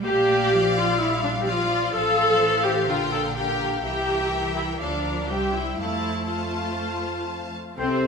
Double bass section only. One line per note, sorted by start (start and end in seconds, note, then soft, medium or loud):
0.04 1.89 A#1 medium
1.93 2.86 A1 medium
2.88 3.84 A#1 medium
3.85 4.77 C2 soft
4.81 5.30 D2 medium
5.30 5.80 C2 soft
5.80 7.54 F2 soft
7.78 8.07 C2 soft